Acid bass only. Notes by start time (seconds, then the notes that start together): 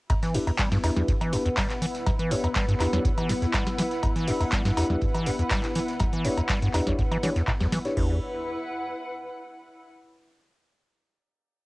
0.10 E2
0.23 E3
0.34 E2
0.47 E2
0.59 G3
0.72 G2
0.84 E2
0.96 E2
1.08 E2
1.21 E3
1.33 E2
1.46 E2
1.57 G3
1.82 E3
2.07 E2
2.19 E3
2.31 E2
2.44 E2
2.56 G3
2.68 G2
2.80 E2
2.93 E2
3.05 E2
3.18 E3
3.29 E2
3.42 E2
3.54 G3
3.79 E3
4.03 E2
4.16 E3
4.28 E2
4.41 E2
4.52 G3
4.65 G2
4.77 E2
4.90 E2
5.02 E2
5.14 E3
5.26 E2
5.39 E2
5.51 G3
5.76 E3
6.00 E2
6.13 E3
6.25 E2
6.37 E2
6.49 G3
6.62 G2
6.74 E2
6.87 E2
6.99 E2
7.11 E3
7.23 E3
7.36 E2
7.48 A2
7.60 E2
7.72 E3
7.97 E2